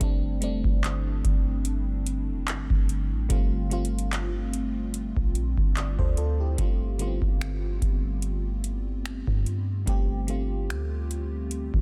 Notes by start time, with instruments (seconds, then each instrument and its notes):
0.00 808-style bass G1, fm electric piano D3 G3 A3 C4 D4, kick, closed hi-hat
0.41 808-style bass F1, fm electric piano D3 G3 A3 C4 D4, closed hi-hat
0.64 808-style bass G1, kick
0.84 clap, closed hi-hat
1.25 808-style bass G1, kick, closed hi-hat
1.65 closed hi-hat
2.06 closed hi-hat
2.29 808-style bass F1
2.48 808-style bass G1, clap, closed hi-hat
2.70 808-style bass G1, kick
2.89 closed hi-hat
3.11 808-style bass A1
3.29 808-style bass G1, fm electric piano D3 G3 A3 C4 F4, kick, closed hi-hat
3.70 fm electric piano D3 G3 A3 C4 F4, closed hi-hat
3.85 closed hi-hat
3.99 closed hi-hat
4.13 clap, closed hi-hat
4.54 closed hi-hat
4.94 closed hi-hat
5.16 808-style bass A#1, kick
5.35 closed hi-hat
5.58 808-style bass G1, kick
5.77 fm electric piano D5, clap, closed hi-hat
5.99 808-style bass D2, fm electric piano A4 C5, kick
6.17 fm electric piano F4 A4, closed hi-hat
6.40 fm electric piano E4 G4
6.57 808-style bass G1, fm electric piano D3 G3 A3 C4 F4, kick, closed hi-hat
6.99 fm electric piano D3 G3 A3 B3 F4, closed hi-hat
7.07 fm electric piano C4
7.22 808-style bass G1, kick
7.41 finger snap, closed hi-hat
7.82 808-style bass G1, kick, closed hi-hat
8.22 closed hi-hat
8.64 closed hi-hat
9.06 finger snap, closed hi-hat
9.27 808-style bass G2, kick
9.46 closed hi-hat
9.86 808-style bass G1, fm electric piano D3 G3 A3 C4 G4, kick, closed hi-hat
10.27 fm electric piano D3 G3 A3 C4 F4, closed hi-hat
10.69 808-style bass D2, finger snap, closed hi-hat
11.11 closed hi-hat
11.51 closed hi-hat
11.74 808-style bass G1, kick